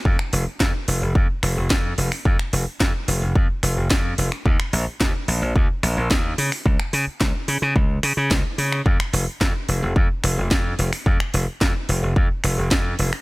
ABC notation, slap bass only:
X:1
M:4/4
L:1/16
Q:1/4=109
K:Ebmix
V:1 name="Slap bass" clef=bass
F,, z F,,, z F,, z F,,, F,,, F,, z F,,, F,,, F,,2 F,,, z | F,, z F,,, z F,, z F,,, F,,, F,, z F,,, F,,, z2 F,,, z | E,, z B,,, z E,, z B,,, B,,, z2 B,,, B,,, E,,2 D, z | D,, z D, z D,, z D, D, D,,2 D, D, D,, z D,2 |
F,, z F,,, z F,, z F,,, F,,, F,, z F,,, F,,, F,,2 F,,, z | F,, z F,,, z F,, z F,,, F,,, F,, z F,,, F,,, F,,2 F,,, z |]